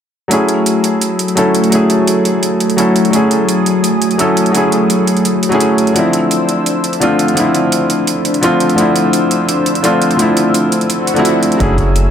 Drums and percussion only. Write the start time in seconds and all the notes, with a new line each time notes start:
0.31 closed hi-hat
0.49 closed hi-hat
0.66 closed hi-hat
0.84 closed hi-hat
1.01 closed hi-hat
1.19 closed hi-hat
1.28 closed hi-hat
1.37 closed hi-hat
1.55 closed hi-hat
1.64 closed hi-hat
1.72 closed hi-hat
1.90 closed hi-hat
2.07 closed hi-hat
2.25 closed hi-hat
2.43 closed hi-hat
2.60 closed hi-hat
2.70 closed hi-hat
2.78 closed hi-hat
2.96 closed hi-hat
3.05 closed hi-hat
3.13 closed hi-hat
3.31 closed hi-hat
3.49 closed hi-hat
3.66 closed hi-hat
3.84 closed hi-hat
4.02 closed hi-hat
4.11 closed hi-hat
4.19 closed hi-hat
4.37 closed hi-hat
4.46 closed hi-hat
4.55 closed hi-hat
4.72 closed hi-hat
4.90 closed hi-hat
5.07 closed hi-hat
5.17 closed hi-hat
5.25 closed hi-hat
5.43 closed hi-hat
5.52 closed hi-hat
5.60 closed hi-hat
5.78 closed hi-hat
5.87 closed hi-hat
5.96 closed hi-hat
6.13 closed hi-hat
6.31 closed hi-hat
6.49 closed hi-hat
6.66 closed hi-hat
6.84 closed hi-hat
6.93 closed hi-hat
7.02 closed hi-hat
7.19 closed hi-hat
7.28 closed hi-hat
7.37 closed hi-hat
7.55 closed hi-hat
7.72 closed hi-hat
7.90 closed hi-hat
8.07 closed hi-hat
8.25 closed hi-hat
8.34 closed hi-hat
8.43 closed hi-hat
8.60 closed hi-hat
8.69 closed hi-hat
8.78 closed hi-hat
8.96 closed hi-hat
9.13 closed hi-hat
9.31 closed hi-hat
9.49 closed hi-hat
9.66 closed hi-hat
9.75 closed hi-hat
9.84 closed hi-hat
10.02 closed hi-hat
10.11 closed hi-hat
10.19 closed hi-hat
10.37 closed hi-hat
10.54 closed hi-hat
10.72 closed hi-hat
10.81 closed hi-hat
10.90 closed hi-hat
11.07 closed hi-hat
11.16 closed hi-hat
11.25 closed hi-hat
11.43 closed hi-hat
11.52 closed hi-hat
11.60 kick, closed hi-hat
11.78 kick, closed hi-hat
11.96 closed hi-hat